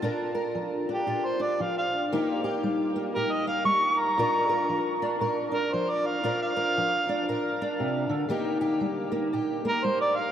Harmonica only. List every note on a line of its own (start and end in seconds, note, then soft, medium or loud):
0.93 1.27 G4 medium
1.26 1.44 C5 medium
1.42 1.63 D5 medium
1.61 1.77 F5 medium
1.78 2.04 F5 medium
3.15 3.33 A#4 medium
3.32 3.47 D#5 medium
3.47 3.65 F5 medium
3.65 4.01 C#6 loud
3.99 5.00 A#5 loud
5.54 5.74 A#4 medium
5.73 5.91 C5 medium
5.90 6.08 D5 medium
6.06 6.40 F5 medium
6.42 7.42 F5 loud
9.68 9.86 A#4 medium
9.84 10.00 C5 medium
10.01 10.17 D5 medium
10.16 10.32 F5 medium